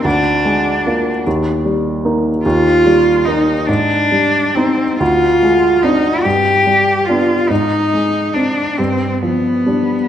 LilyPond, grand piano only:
\new Staff \with { instrumentName = "Grand piano" } { \clef bass \time 6/8 \key aes \lydian \tempo 4. = 48 d,8 aes8 <bes f'>8 ees,8 g8 <bes ees'>8 | ees,8 g8 <bes ees'>8 aes,8 g8 <c' ees'>8 | d,8 aes8 <c' d'>8 g,8 g8 <b d'>8 | aes,8 aes8 c'8 g,8 f8 <g d'>8 | }